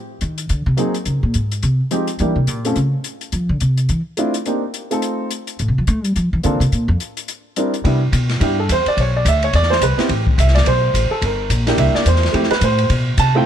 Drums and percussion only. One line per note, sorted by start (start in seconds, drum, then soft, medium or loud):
0.21 closed hi-hat soft
0.38 closed hi-hat soft
0.49 closed hi-hat soft
0.78 closed hi-hat soft
0.94 closed hi-hat soft
1.05 closed hi-hat soft
1.34 closed hi-hat soft
1.52 closed hi-hat soft
1.63 closed hi-hat soft
1.91 closed hi-hat soft
2.08 closed hi-hat soft
2.19 closed hi-hat soft
2.47 closed hi-hat soft
2.65 closed hi-hat soft
2.76 closed hi-hat soft
3.04 closed hi-hat soft
3.21 closed hi-hat soft
3.32 closed hi-hat soft
3.60 closed hi-hat soft
3.77 closed hi-hat soft
3.89 closed hi-hat soft
4.17 closed hi-hat soft
4.34 closed hi-hat soft
4.46 closed hi-hat soft
4.74 closed hi-hat soft
4.91 closed hi-hat soft
5.02 closed hi-hat soft
5.31 closed hi-hat soft
5.47 closed hi-hat soft
5.59 closed hi-hat soft
5.87 closed hi-hat soft
6.04 closed hi-hat soft
6.16 closed hi-hat soft
6.43 closed hi-hat soft
6.61 closed hi-hat soft
6.72 closed hi-hat soft
7.00 closed hi-hat soft
7.17 closed hi-hat soft
7.28 closed hi-hat soft
7.56 closed hi-hat soft
7.74 closed hi-hat soft
7.85 kick soft
7.85 ride medium
8.13 kick soft
8.13 hi-hat pedal medium
8.13 ride medium
8.29 snare soft
8.29 ride soft
8.41 kick soft
8.41 ride medium
8.69 kick soft
8.69 hi-hat pedal medium
8.69 ride medium
8.86 ride soft
8.97 kick soft
8.97 ride medium
9.25 kick soft
9.25 hi-hat pedal medium
9.25 ride medium
9.43 ride soft
9.53 kick soft
9.53 ride medium
9.63 snare soft
9.72 snare medium
9.82 kick soft
9.82 hi-hat pedal medium
9.82 ride medium
9.99 snare soft
9.99 ride soft
10.09 kick soft
10.09 ride medium
10.27 kick medium
10.39 hi-hat pedal medium
10.39 ride medium
10.48 snare soft
10.55 snare medium
10.55 ride medium
10.66 kick soft
10.66 ride medium
10.94 kick soft
10.94 hi-hat pedal medium
10.94 ride medium
11.22 kick soft
11.22 ride medium
11.50 kick soft
11.50 hi-hat pedal medium
11.50 ride medium
11.67 snare soft
11.67 ride medium
11.78 kick soft
11.78 ride medium
11.95 snare medium
12.06 kick soft
12.06 hi-hat pedal soft
12.06 ride medium
12.16 snare soft
12.23 snare soft
12.23 ride soft
12.34 kick soft
12.34 ride medium
12.43 snare soft
12.51 snare soft
12.51 ride medium
12.61 kick soft
12.61 hi-hat pedal soft
12.61 ride medium
12.78 ride soft
12.90 kick soft
12.90 ride medium
13.18 kick soft
13.18 hi-hat pedal medium
13.18 ride medium